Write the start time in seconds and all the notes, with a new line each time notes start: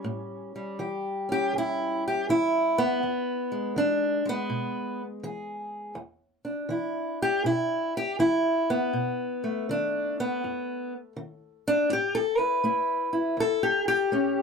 Already playing: G3 C#4
0.04 A2
0.56 G3
0.79 E3 G4
1.29 C#4 G4
1.53 E2
1.58 E4
2.08 G4
2.29 E3 E4
2.78 B3
3.03 E2
3.52 G#3
3.76 E3 D4
4.25 G#3 B3
4.50 B2
5.23 E3 G#4
5.95 E2
6.45 D4
6.69 E3 E4
7.22 G4
7.44 B2 E4
7.97 G4
8.19 E3 E4
8.70 B3
8.93 B2
9.44 A3
9.69 D#3 D4
10.20 B3
10.44 F#2
11.16 D#3
11.68 D4
11.90 A2 G4
12.15 A4
12.38 E4 B4
12.64 A3 E4
13.13 E4
13.37 E2 A4
13.63 G4
13.88 G4
14.12 A3 C#4